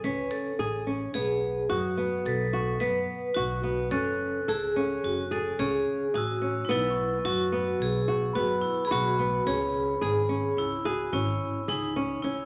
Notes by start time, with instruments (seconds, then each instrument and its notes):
0.03 upright bass C#2, nylon-string guitar C#4, vibraphone B4
0.31 vibraphone A4
0.59 upright bass A1, nylon-string guitar G#4
0.87 nylon-string guitar C#4
1.14 upright bass B1, nylon-string guitar B3, vibraphone G#4
1.69 upright bass F#2, nylon-string guitar F#4, vibraphone F#4, glockenspiel D#6
1.97 nylon-string guitar B3
2.25 upright bass B1, vibraphone A4, glockenspiel B6
2.53 nylon-string guitar F#4
2.80 upright bass F#2, nylon-string guitar B3, vibraphone B4
3.34 upright bass B1, vibraphone F#4, nylon-string guitar F#4
3.63 nylon-string guitar B3
3.91 upright bass F#1, nylon-string guitar C#4, vibraphone A4, glockenspiel F#6
4.48 upright bass C#2, vibraphone G#4, nylon-string guitar A4
4.76 nylon-string guitar C#4
5.04 upright bass F#1, vibraphone F#4
5.31 nylon-string guitar G#4, vibraphone A4
5.59 upright bass C#2, nylon-string guitar C#4, vibraphone G#4
6.14 upright bass A1, vibraphone F#4, nylon-string guitar G#4, glockenspiel E6
6.42 nylon-string guitar C#4
6.65 vibraphone D#4
6.69 upright bass B1, nylon-string guitar B3, vibraphone E4, glockenspiel A6
6.90 glockenspiel C#6
7.25 upright bass F#2, nylon-string guitar F#4, vibraphone F#4
7.52 nylon-string guitar B3
7.80 upright bass B1, vibraphone G#4
8.08 nylon-string guitar F#4
8.33 upright bass F#2, nylon-string guitar B3, vibraphone F#4, glockenspiel B5
8.61 vibraphone E4
8.85 vibraphone G#4, glockenspiel B5
8.91 upright bass B1, nylon-string guitar F#4, vibraphone F#4
9.19 nylon-string guitar B3
9.46 upright bass C#2, nylon-string guitar C#4, vibraphone G#4
10.01 upright bass G#1, nylon-string guitar G#4, vibraphone G#4
10.29 nylon-string guitar C#4
10.57 upright bass C#2, vibraphone E4
10.85 vibraphone F#4, nylon-string guitar G#4
11.12 upright bass G#1, nylon-string guitar C#4, vibraphone E4
11.68 upright bass C#2, vibraphone D#4, nylon-string guitar G#4
11.96 nylon-string guitar C#4
12.22 upright bass C#2, nylon-string guitar C#4, vibraphone E4